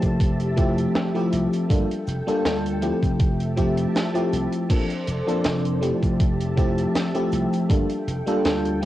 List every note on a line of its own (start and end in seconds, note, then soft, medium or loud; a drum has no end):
0.00 0.85 F1 medium
0.00 0.53 F3 medium
0.00 0.53 A3 medium
0.00 0.53 C4 medium
0.00 0.53 E4 medium
0.00 0.54 G4 loud
0.00 1.68 G4 medium
0.00 1.68 E5 medium
0.00 1.66 A5 medium
0.00 kick medium
0.00 closed hi-hat medium
0.00 cabasa medium
0.20 kick loud
0.20 closed hi-hat loud
0.20 cabasa soft
0.40 closed hi-hat medium
0.56 1.10 F3 loud
0.56 1.10 A3 medium
0.56 1.10 C4 medium
0.56 1.10 E4 medium
0.56 1.11 G4 loud
0.56 kick loud
0.56 closed hi-hat medium
0.56 cabasa medium
0.78 closed hi-hat medium
0.78 cabasa medium
0.95 snare loud
0.95 closed hi-hat medium
0.95 cabasa soft
1.14 1.65 F3 loud
1.14 1.66 A3 medium
1.14 1.66 C4 medium
1.14 1.66 E4 medium
1.14 1.66 G4 loud
1.14 closed hi-hat medium
1.33 1.45 C2 medium
1.33 closed hi-hat medium
1.33 cabasa medium
1.53 closed hi-hat medium
1.53 cabasa medium
1.69 1.83 G1 loud
1.69 1.85 G3 medium
1.69 1.85 A#3 medium
1.69 1.86 D4 medium
1.69 1.86 F4 medium
1.69 1.86 A4 loud
1.69 3.19 A4 medium
1.69 3.19 G5 medium
1.69 kick loud
1.69 closed hi-hat loud
1.69 cabasa soft
1.91 closed hi-hat medium
2.07 2.20 F1 loud
2.07 closed hi-hat medium
2.07 cabasa medium
2.27 2.78 G3 loud
2.27 2.78 A#3 medium
2.27 2.78 D4 medium
2.27 2.78 F4 medium
2.27 2.79 A4 loud
2.27 muted slap bass stroke soft
2.27 closed hi-hat medium
2.27 cabasa medium
2.45 2.91 D2 loud
2.45 snare loud
2.45 closed hi-hat loud
2.45 cabasa medium
2.66 closed hi-hat medium
2.81 3.53 F3 medium
2.81 3.53 A3 medium
2.81 3.53 C4 medium
2.81 3.53 E4 medium
2.81 3.53 G4 medium
2.81 closed hi-hat medium
2.81 cabasa medium
3.03 3.85 F1 medium
3.03 kick medium
3.03 closed hi-hat medium
3.03 cabasa medium
3.20 4.69 G4 medium
3.20 4.69 E5 medium
3.20 4.69 A5 loud
3.20 kick loud
3.20 closed hi-hat loud
3.20 cabasa soft
3.40 closed hi-hat medium
3.57 4.10 F3 loud
3.57 4.10 A3 medium
3.57 4.10 C4 medium
3.57 4.10 E4 medium
3.57 4.11 G4 loud
3.57 kick medium
3.57 closed hi-hat medium
3.57 cabasa medium
3.77 closed hi-hat medium
3.77 cabasa medium
3.95 snare loud
3.95 closed hi-hat medium
3.95 cabasa soft
4.14 4.65 F3 loud
4.14 4.65 A3 medium
4.14 4.66 C4 medium
4.14 4.66 E4 medium
4.14 4.66 G4 loud
4.14 closed hi-hat medium
4.33 4.45 C2 medium
4.33 closed hi-hat medium
4.33 cabasa medium
4.53 closed hi-hat medium
4.53 cabasa medium
4.69 4.83 A#1 loud
4.69 4.85 F3 medium
4.69 4.85 A#3 medium
4.69 4.86 C4 medium
4.69 4.86 D4 medium
4.69 5.81 A4 medium
4.69 4.86 A4 loud
4.69 5.81 C5 medium
4.69 5.82 D5 medium
4.69 kick loud
4.69 closed hi-hat loud
4.69 crash medium
4.69 cabasa soft
4.90 closed hi-hat medium
5.07 5.20 F1 medium
5.07 closed hi-hat medium
5.07 cabasa medium
5.27 5.78 F3 loud
5.27 5.78 A#3 medium
5.27 5.78 C4 medium
5.27 5.78 D4 medium
5.27 5.79 A4 loud
5.27 closed hi-hat medium
5.27 cabasa medium
5.44 5.90 F1 loud
5.44 snare loud
5.44 closed hi-hat loud
5.44 cabasa soft
5.65 closed hi-hat medium
5.81 6.53 F3 medium
5.81 6.53 A3 medium
5.81 6.53 C4 medium
5.81 6.53 E4 medium
5.81 6.53 G4 medium
5.81 7.68 G4 medium
5.81 7.68 E5 medium
5.81 7.68 A5 loud
5.81 closed hi-hat medium
5.81 cabasa medium
6.03 6.85 F1 loud
6.03 kick medium
6.03 closed hi-hat medium
6.03 cabasa medium
6.20 kick loud
6.20 closed hi-hat loud
6.20 cabasa soft
6.40 closed hi-hat medium
6.56 7.10 F3 loud
6.56 7.10 A3 medium
6.56 7.10 C4 medium
6.56 7.10 E4 medium
6.56 7.11 G4 loud
6.56 kick loud
6.56 closed hi-hat medium
6.56 cabasa medium
6.78 closed hi-hat medium
6.78 cabasa medium
6.95 snare loud
6.95 closed hi-hat loud
6.95 cabasa soft
7.14 7.65 F3 loud
7.14 7.65 A3 loud
7.14 7.66 C4 medium
7.14 7.66 E4 medium
7.14 7.66 G4 loud
7.14 closed hi-hat medium
7.32 7.45 C2 medium
7.32 closed hi-hat medium
7.32 cabasa medium
7.53 closed hi-hat medium
7.53 cabasa medium
7.69 7.82 G1 loud
7.69 7.85 G3 medium
7.69 7.85 A#3 medium
7.69 7.86 D4 medium
7.69 7.86 F4 medium
7.69 8.85 A4 medium
7.69 7.86 A4 medium
7.69 8.85 G5 medium
7.69 kick loud
7.69 closed hi-hat medium
7.69 cabasa soft
7.90 closed hi-hat medium
8.07 8.20 F1 medium
8.07 closed hi-hat medium
8.07 cabasa medium
8.26 8.78 G3 loud
8.26 8.78 A#3 medium
8.26 8.78 D4 medium
8.26 8.78 F4 medium
8.26 8.78 A4 loud
8.26 muted slap bass stroke soft
8.26 closed hi-hat medium
8.26 cabasa medium
8.45 8.85 D2 loud
8.45 snare loud
8.45 closed hi-hat loud
8.45 cabasa soft
8.65 closed hi-hat medium
8.81 8.85 F3 medium
8.81 8.85 A3 medium
8.81 8.85 C4 medium